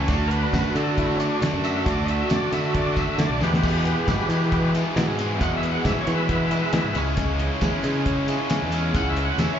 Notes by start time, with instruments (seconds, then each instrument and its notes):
0.08 fingered electric bass D2, steel-string acoustic guitar D3 A3 D4 F#4, tonewheel organ A3 D4 F#4 A4, kick, closed hi-hat, tambourine
0.28 steel-string acoustic guitar D3 A3 D4, tonewheel organ A#4, closed hi-hat
0.32 steel-string acoustic guitar F#4, tonewheel organ B4, tambourine
0.41 steel-string acoustic guitar A3 D4 F#4
0.52 fingered electric bass F#2, steel-string acoustic guitar D3 A3 D4 F#4, kick, snare, closed hi-hat, tambourine
0.63 steel-string acoustic guitar A3 D4 F#4
0.75 steel-string acoustic guitar D3 A3 D4 F#4, fingered electric bass D3, tonewheel organ A4, closed hi-hat, tambourine
0.86 steel-string acoustic guitar A3 D4 F#4
0.97 distorted electric guitar D3 A3 D4 F#4, tonewheel organ E4, kick, closed hi-hat, tambourine
1.16 steel-string acoustic guitar D3 A3 D4, tonewheel organ C#4, tambourine
1.20 tonewheel organ D4, steel-string acoustic guitar F#4, closed hi-hat
1.29 steel-string acoustic guitar A3 D4 F#4
1.40 steel-string acoustic guitar D3 A3 D4 F#4, fingered electric bass D3, snare, closed hi-hat, tambourine
1.53 fingered electric bass F#2
1.63 steel-string acoustic guitar D3 A3 D4 F#4, tonewheel organ E5, closed hi-hat, tambourine
1.75 steel-string acoustic guitar A3 D4 F#4
1.85 fingered electric bass D2, steel-string acoustic guitar D3 A3 D4 F#4, tonewheel organ D5, kick, closed hi-hat, tambourine
2.05 steel-string acoustic guitar D3 A3, tonewheel organ D#5, closed hi-hat, tambourine
2.09 steel-string acoustic guitar D4 F#4, tonewheel organ E5
2.19 steel-string acoustic guitar A3 D4 F#4
2.29 fingered electric bass F#2, steel-string acoustic guitar D3 A3 D4 F#4, tonewheel organ D5, snare, closed hi-hat, tambourine
2.41 steel-string acoustic guitar A3 D4 F#4
2.52 steel-string acoustic guitar D3 A3 D4 F#4, fingered electric bass D3, tonewheel organ E5, closed hi-hat, tambourine
2.63 steel-string acoustic guitar A3 D4 F#4
2.74 distorted electric guitar D3 A3 D4 F#4, tonewheel organ D5, kick, closed hi-hat
2.94 steel-string acoustic guitar D3 A3 D4, tonewheel organ D#5, kick, closed hi-hat, tambourine
2.98 steel-string acoustic guitar F#4, tonewheel organ E5
3.06 steel-string acoustic guitar A3 D4 F#4
3.18 fingered electric bass D3, steel-string acoustic guitar D3 A3 D4 F#4, tonewheel organ D5, snare, closed hi-hat, tambourine
3.29 fingered electric bass B1
3.40 overdriven electric guitar E2 B2, fingered electric bass E2, steel-string acoustic guitar E3 G#3 B3 G#4, tonewheel organ G#3 B3 E4 G4 B4, distorted electric guitar E4, snare, tambourine
3.54 snare
3.63 steel-string acoustic guitar E2 B2 E3 G#3 B3 G#4, distorted electric guitar E4, kick, crash, tambourine
3.85 steel-string acoustic guitar E3 G#3 B3 G#4, distorted electric guitar E4, closed hi-hat, tambourine
3.97 steel-string acoustic guitar E3 G#3 B3 G#4
4.08 steel-string acoustic guitar E2 B2 E3 G#3 B3 G#4, fingered electric bass G#2, distorted electric guitar E4, kick, snare, closed hi-hat, tambourine
4.18 steel-string acoustic guitar E3 G#3 B3 G#4
4.29 fingered electric bass E3, steel-string acoustic guitar E3 G#3 B3 G#4, distorted electric guitar E4, closed hi-hat, tambourine
4.42 steel-string acoustic guitar E3 G#3 B3
4.51 distorted electric guitar E3 G#3 B3 E4, kick, closed hi-hat, tambourine
4.73 overdriven electric guitar E2 B2, steel-string acoustic guitar E3 G#3 B3 G#4, distorted electric guitar E4, closed hi-hat, tambourine
4.84 steel-string acoustic guitar E3 G#3 B3 G#4
4.96 steel-string acoustic guitar E2 B2 E3 G#3 B3 G#4, fingered electric bass E3, distorted electric guitar E4, snare, closed hi-hat, tambourine
5.07 fingered electric bass G#2
5.17 overdriven electric guitar E2 B2, steel-string acoustic guitar E3 G#3 B3 G#4, distorted electric guitar E4, closed hi-hat, tambourine
5.40 steel-string acoustic guitar E2 B2 E3 G#3 B3 G#4, fingered electric bass E2, distorted electric guitar E4, tonewheel organ F#5, kick, closed hi-hat, tambourine
5.57 tonewheel organ E5
5.62 steel-string acoustic guitar E3 G#3 B3 G#4, distorted electric guitar E4, closed hi-hat, tambourine
5.72 steel-string acoustic guitar E3 G#3 B3 G#4, tonewheel organ F#5
5.85 steel-string acoustic guitar E2 B2 E3 G#3 B3 G#4, fingered electric bass G#2, distorted electric guitar E4, tonewheel organ E5, kick, snare, closed hi-hat, tambourine
5.94 steel-string acoustic guitar E3 G#3 B3 G#4
6.01 tonewheel organ C#5
6.06 steel-string acoustic guitar E3 G#3 B3 G#4, fingered electric bass E3, distorted electric guitar E4, closed hi-hat, tambourine
6.10 distorted electric guitar E3
6.15 steel-string acoustic guitar B3 G#4, tonewheel organ B4 E5
6.19 steel-string acoustic guitar E3 G#3
6.29 distorted electric guitar E3 G#3 B3 E4, kick, closed hi-hat, tambourine
6.50 overdriven electric guitar E2 B2, steel-string acoustic guitar E3 G#3 B3 G#4, distorted electric guitar E4, closed hi-hat, tambourine
6.61 steel-string acoustic guitar E3 G#3 B3 G#4
6.73 steel-string acoustic guitar E2 B2 E3 G#3 B3 G#4, fingered electric bass E3, distorted electric guitar E4, snare, closed hi-hat, tambourine
6.84 fingered electric bass G#2
6.94 fingered electric bass C#2, overdriven electric guitar C#3, steel-string acoustic guitar E3 G#3 C#4 E4, tonewheel organ G#3 C#4 E4 G#4, closed hi-hat, tambourine
6.99 distorted electric guitar C#3
7.06 steel-string acoustic guitar G#3 C#4 E4
7.17 steel-string acoustic guitar C#3 E3 G#3 C#4 E4, kick, closed hi-hat, tambourine
7.39 steel-string acoustic guitar E3 G#3 C#4 E4, closed hi-hat, tambourine
7.50 steel-string acoustic guitar G#3 C#4 E4
7.61 fingered electric bass E2, steel-string acoustic guitar C#3 E3 G#3 C#4 E4, kick, snare, closed hi-hat, tambourine
7.72 steel-string acoustic guitar G#3 C#4 E4
7.83 fingered electric bass C#3, distorted electric guitar C#3, steel-string acoustic guitar E3 G#3 C#4 E4, closed hi-hat, tambourine
7.94 steel-string acoustic guitar G#3 C#4 E4
8.05 distorted electric guitar C#3 G#3 C#4 E4, kick, closed hi-hat, tambourine
8.28 overdriven electric guitar C#3, steel-string acoustic guitar E3 G#3 C#4 E4, closed hi-hat, tambourine
8.38 steel-string acoustic guitar G#3 C#4 E4
8.49 steel-string acoustic guitar C#3 E3 G#3 C#4 E4, fingered electric bass C#3, snare, closed hi-hat, tambourine
8.62 fingered electric bass E2
8.71 overdriven electric guitar C#3, steel-string acoustic guitar E3 G#3 C#4 E4, closed hi-hat, tambourine
8.94 fingered electric bass C#2, steel-string acoustic guitar C#3 E3 G#3 C#4 E4, tonewheel organ F#5, kick, closed hi-hat, tambourine
9.10 tonewheel organ E5
9.16 steel-string acoustic guitar E3 G#3 C#4 E4, closed hi-hat, tambourine
9.25 steel-string acoustic guitar C#4 E4, tonewheel organ F#5
9.29 steel-string acoustic guitar G#3
9.38 fingered electric bass E2, steel-string acoustic guitar C#3 E3 G#3 C#4 E4, tonewheel organ E5, snare, closed hi-hat, tambourine
9.49 steel-string acoustic guitar G#3 C#4 E4
9.55 tonewheel organ C#5